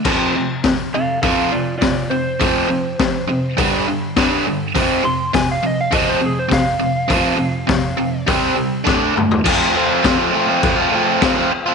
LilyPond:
<<
  \new Staff \with { instrumentName = "Electric slide guitar" } { \time 4/4 \key f \major \tempo 4 = 102 r4. <a' f''>8 <a' f''>8 <f' d''>8 <f' d''>8 c''8~ | c''2~ c''8 r4. | r8 c'''8 aes''16 f''16 ees''16 f''16 ees''16 c''16 aes'16 c''16 f''4~ | f''2 r2 |
r1 | }
  \new Staff \with { instrumentName = "Overdriven electric guitar" } { \clef bass \time 4/4 \key f \major <f, c f>8 <f, c>8 <f, c>8 <f, c>8 <f, c f>8 <f, c>8 <f, c>8 <f, c>8 | <f, c f>8 <f, c>8 <f, c>8 <f, c>8 <g, d g>8 <g, d>8 <g, d g>8 <g, d>8 | <f, c f>8 <f, c>8 <f, c>8 <f, c>8 <f, c f>8 <f, c>8 <f, c>8 <f, c>8 | <f, c f>8 <f, c>8 <f, c>8 <f, c>8 <c g c'>8 <c g>8 <d a d'>8 <d a>8 |
<f a c' f'>8 <f a c' f'>8 <f a c' f'>16 <a c' f'>16 <f a c' f'>16 <a c' f'>8 <a c' f'>16 <f a c' f'>8 <f a c' f'>16 <a c' f'>8 <a c' f'>16 | }
  \new DrumStaff \with { instrumentName = "Drums" } \drummode { \time 4/4 <cymc bd>4 <hho bd sn>4 <hho bd>4 <hho bd sn>4 | <hho bd>4 <hho bd sn>4 <hho bd>4 <hho bd sn>4 | <hho bd>4 <hho bd sn>4 <hho bd>4 <hho bd sn>4 | <hho bd>4 <hho bd sn>4 <hho bd>4 <bd sn>8 toml16 tomfh16 |
<cymc bd>4 <cymc bd sn>4 <cymc bd>4 <cymc bd sn>4 | }
>>